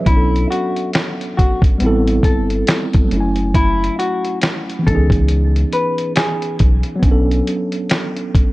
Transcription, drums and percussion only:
0.06 kick loud
0.06 closed hi-hat medium
0.36 closed hi-hat soft
0.52 closed hi-hat medium
0.76 closed hi-hat soft
0.93 finger snap medium
0.93 snare loud
0.93 closed hi-hat medium
1.21 closed hi-hat soft
1.39 kick medium
1.39 closed hi-hat medium
1.62 kick loud
1.62 closed hi-hat soft
1.80 closed hi-hat medium
2.08 closed hi-hat soft
2.23 kick medium
2.23 closed hi-hat medium
2.50 closed hi-hat soft
2.67 finger snap medium
2.67 snare loud
2.67 closed hi-hat medium
2.93 kick medium
2.93 closed hi-hat soft
3.11 closed hi-hat medium
3.36 closed hi-hat soft
3.54 kick loud
3.54 closed hi-hat medium
3.84 closed hi-hat soft
4.00 closed hi-hat medium
4.25 closed hi-hat soft
4.41 finger snap medium
4.41 snare loud
4.41 closed hi-hat medium
4.70 closed hi-hat soft
4.87 kick medium
4.87 closed hi-hat medium
5.10 kick medium
5.10 closed hi-hat soft
5.28 closed hi-hat medium
5.56 closed hi-hat soft
5.72 closed hi-hat medium
5.98 closed hi-hat medium
6.16 finger snap medium
6.16 snare loud
6.16 closed hi-hat medium
6.42 closed hi-hat soft
6.59 kick medium
6.59 closed hi-hat medium
6.83 closed hi-hat soft
7.03 kick medium
7.03 closed hi-hat medium
7.31 closed hi-hat soft
7.47 closed hi-hat medium
7.72 closed hi-hat soft
7.89 finger snap medium
7.89 snare loud
7.89 closed hi-hat medium
8.17 closed hi-hat soft
8.35 kick medium
8.35 closed hi-hat medium

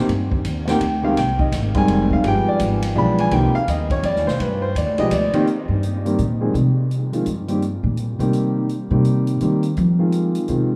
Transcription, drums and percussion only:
0.09 kick soft
0.09 ride medium
0.32 kick medium
0.45 kick soft
0.45 hi-hat pedal medium
0.45 ride medium
0.67 snare medium
0.67 ride soft
0.81 kick soft
0.81 ride medium
1.17 kick soft
1.17 snare soft
1.17 ride medium
1.39 kick medium
1.52 kick soft
1.52 snare soft
1.52 hi-hat pedal medium
1.52 ride medium
1.74 kick medium
1.74 ride medium
1.88 kick soft
1.88 ride medium
2.11 kick medium
2.24 kick soft
2.24 ride medium
2.59 kick soft
2.59 hi-hat pedal medium
2.59 ride medium
2.82 ride medium
2.96 kick soft
3.18 ride medium
3.31 kick soft
3.31 ride medium
3.68 kick soft
3.68 hi-hat pedal medium
3.68 ride medium
3.90 kick medium
3.90 ride medium
4.03 kick soft
4.03 ride medium
4.16 snare soft
4.28 snare soft
4.39 kick soft
4.39 ride medium
4.75 kick soft
4.75 hi-hat pedal medium
4.75 ride medium
4.98 ride medium
5.11 kick soft
5.11 hi-hat pedal medium
5.11 ride medium
5.33 ride medium
5.47 closed hi-hat soft
5.83 closed hi-hat soft
6.06 closed hi-hat soft
6.18 closed hi-hat soft
6.55 closed hi-hat soft
6.91 closed hi-hat soft
7.13 closed hi-hat soft
7.26 closed hi-hat soft
7.48 closed hi-hat soft
7.62 closed hi-hat soft
7.97 closed hi-hat soft
8.20 closed hi-hat soft
8.33 closed hi-hat soft
8.69 closed hi-hat soft
9.05 closed hi-hat soft
9.27 closed hi-hat soft
9.40 closed hi-hat soft
9.63 closed hi-hat soft
9.77 closed hi-hat soft
10.12 closed hi-hat soft
10.35 closed hi-hat soft
10.48 closed hi-hat soft

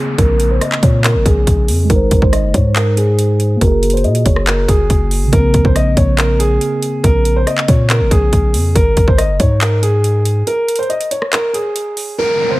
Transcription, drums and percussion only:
0.18 kick loud
0.18 closed hi-hat medium
0.40 closed hi-hat medium
0.61 cross-stick medium
0.61 closed hi-hat medium
0.72 clap medium
0.83 kick loud
0.83 closed hi-hat medium
1.04 clap loud
1.04 closed hi-hat medium
1.26 kick loud
1.26 closed hi-hat medium
1.47 kick medium
1.47 closed hi-hat medium
1.68 open hi-hat medium
1.90 kick loud
1.90 closed hi-hat medium
2.11 kick loud
2.11 closed hi-hat medium
2.22 kick loud
2.33 cross-stick medium
2.33 closed hi-hat medium
2.54 kick loud
2.54 closed hi-hat medium
2.76 clap loud
2.76 closed hi-hat medium
2.97 closed hi-hat medium
3.19 closed hi-hat medium
3.40 closed hi-hat medium
3.61 kick loud
3.61 closed hi-hat medium
3.83 closed hi-hat medium
3.90 closed hi-hat medium
3.97 closed hi-hat soft
4.04 closed hi-hat soft
4.15 closed hi-hat medium
4.26 kick loud
4.26 closed hi-hat medium
4.36 cross-stick medium
4.47 clap loud
4.47 closed hi-hat medium
4.68 kick loud
4.68 closed hi-hat medium
4.90 kick loud
4.90 closed hi-hat medium
5.11 open hi-hat medium
5.33 kick loud
5.33 closed hi-hat medium
5.54 kick medium
5.54 closed hi-hat medium
5.65 kick loud
5.76 cross-stick medium
5.76 closed hi-hat medium
5.97 kick loud
5.97 closed hi-hat medium
6.18 clap loud
6.18 closed hi-hat medium
6.40 closed hi-hat medium
6.61 closed hi-hat medium
6.83 closed hi-hat medium
7.04 kick loud
7.04 closed hi-hat medium
7.25 closed hi-hat medium
7.47 cross-stick medium
7.47 closed hi-hat medium
7.58 clap medium
7.68 kick loud
7.68 closed hi-hat medium
7.90 clap loud
7.90 closed hi-hat medium
8.11 kick loud
8.11 closed hi-hat medium
8.33 kick loud
8.33 closed hi-hat medium
8.54 open hi-hat medium
8.76 kick loud
8.76 closed hi-hat medium
8.97 kick medium
8.97 closed hi-hat medium
9.08 kick loud
9.18 cross-stick medium
9.18 closed hi-hat medium
9.40 kick loud
9.40 closed hi-hat medium
9.61 clap loud
9.61 closed hi-hat medium
9.83 closed hi-hat medium
10.04 closed hi-hat medium
10.25 closed hi-hat medium
10.47 closed hi-hat medium
10.68 closed hi-hat medium
10.76 closed hi-hat medium
10.83 closed hi-hat soft
10.90 closed hi-hat soft
11.01 closed hi-hat medium
11.11 closed hi-hat medium
11.22 cross-stick medium
11.33 clap loud
11.33 closed hi-hat medium
11.54 closed hi-hat medium
11.76 closed hi-hat medium
11.97 open hi-hat medium

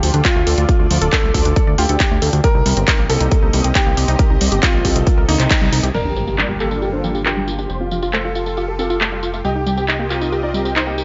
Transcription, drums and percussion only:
0.03 open hi-hat loud
0.14 closed hi-hat medium
0.25 kick loud
0.25 clap loud
0.25 closed hi-hat medium
0.47 open hi-hat medium
0.58 closed hi-hat medium
0.69 kick loud
0.69 closed hi-hat medium
0.91 open hi-hat loud
1.02 closed hi-hat medium
1.13 kick loud
1.13 clap loud
1.13 closed hi-hat medium
1.34 kick medium
1.34 open hi-hat medium
1.45 closed hi-hat medium
1.56 kick loud
1.56 closed hi-hat medium
1.78 open hi-hat medium
1.89 closed hi-hat medium
2.00 kick loud
2.00 clap loud
2.00 closed hi-hat medium
2.22 open hi-hat medium
2.33 closed hi-hat medium
2.44 kick loud
2.44 closed hi-hat medium
2.66 open hi-hat loud
2.77 closed hi-hat medium
2.88 kick loud
2.88 clap loud
2.88 closed hi-hat medium
3.10 open hi-hat medium
3.21 closed hi-hat medium
3.31 kick loud
3.31 closed hi-hat medium
3.53 open hi-hat medium
3.64 closed hi-hat medium
3.75 kick loud
3.75 clap loud
3.75 closed hi-hat medium
3.97 open hi-hat medium
4.08 closed hi-hat medium
4.19 kick loud
4.19 closed hi-hat medium
4.41 open hi-hat loud
4.52 closed hi-hat medium
4.63 kick loud
4.63 clap loud
4.63 closed hi-hat medium
4.85 kick medium
4.85 open hi-hat medium
4.96 closed hi-hat medium
5.07 kick loud
5.07 closed hi-hat medium
5.29 open hi-hat medium
5.40 clap soft
5.40 closed hi-hat medium
5.51 kick loud
5.51 clap loud
5.51 closed hi-hat medium
5.73 open hi-hat medium
5.84 closed hi-hat medium
5.95 crash medium
5.95 tambourine soft
6.16 tambourine medium
6.27 tambourine soft
6.38 clap loud
6.38 tambourine soft
6.60 clap soft
6.60 tambourine medium
6.71 tambourine soft
6.82 tambourine soft
7.04 tambourine medium
7.15 tambourine soft
7.26 clap loud
7.26 tambourine soft
7.48 tambourine medium
7.59 tambourine soft
7.70 tambourine soft
7.91 tambourine medium
8.03 tambourine soft
8.13 clap loud
8.13 tambourine soft
8.35 tambourine medium
8.46 tambourine soft
8.57 tambourine soft
8.79 tambourine medium
8.90 tambourine soft
9.01 clap loud
9.01 tambourine soft
9.23 tambourine medium
9.34 tambourine soft
9.45 tambourine soft
9.66 tambourine medium
9.78 tambourine soft
9.88 clap loud
9.88 tambourine soft
10.10 clap soft
10.10 tambourine medium
10.21 tambourine soft
10.32 tambourine soft
10.54 tambourine medium
10.65 tambourine soft
10.76 clap loud
10.76 tambourine soft
10.98 tambourine medium

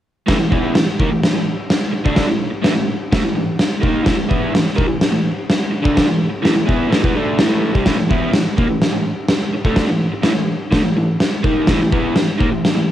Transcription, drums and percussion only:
0.28 kick loud
0.28 snare loud
0.28 crash medium
0.52 kick loud
0.75 snare loud
0.75 crash medium
1.00 kick loud
1.23 snare loud
1.23 crash medium
1.70 snare loud
1.70 crash medium
2.06 kick loud
2.16 kick loud
2.16 snare loud
2.16 crash medium
2.64 snare loud
2.64 crash medium
3.13 kick loud
3.13 snare loud
3.13 crash medium
3.59 snare loud
3.59 crash medium
3.83 kick loud
4.06 kick loud
4.06 snare loud
4.06 crash medium
4.31 kick loud
4.55 snare loud
4.55 crash medium
4.78 kick loud
5.01 snare loud
5.01 crash medium
5.50 snare loud
5.50 crash medium
5.85 kick loud
5.97 kick loud
5.97 snare loud
5.97 crash medium
6.45 snare loud
6.45 crash medium
6.69 kick loud
6.92 snare loud
6.92 crash medium
7.04 kick loud
7.39 snare loud
7.39 crash medium
7.75 kick loud
7.86 kick loud
7.86 snare loud
7.86 crash medium
8.11 kick loud
8.33 snare loud
8.33 crash medium
8.58 kick loud
8.82 snare loud
8.82 crash medium
9.28 snare loud
9.28 crash medium
9.65 kick loud
9.76 kick loud
9.76 snare loud
9.76 crash medium
10.23 snare loud
10.23 crash medium
10.72 kick loud
10.72 snare loud
10.72 crash medium
11.20 snare loud
11.20 crash medium
11.44 kick loud
11.67 kick loud
11.67 snare loud
11.67 crash medium
11.92 kick loud
12.16 snare loud
12.16 crash medium
12.40 kick loud
12.65 snare loud
12.65 crash medium

